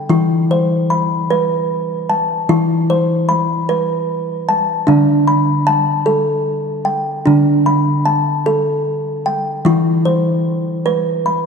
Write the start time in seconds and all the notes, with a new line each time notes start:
Already playing: G5
0.10 E3 E4
0.51 C5
0.90 B5
1.30 B4
2.10 A5
2.49 E3 E4
2.90 C5
3.29 B5
3.69 B4
4.49 A5
4.87 D3 D4
5.27 B5
5.67 A5
6.06 A4
6.85 G5
7.26 D3 D4
7.66 B5
8.05 A5
8.46 A4
9.26 G5
9.65 E3 E4
10.05 C5
10.86 B4
11.26 B5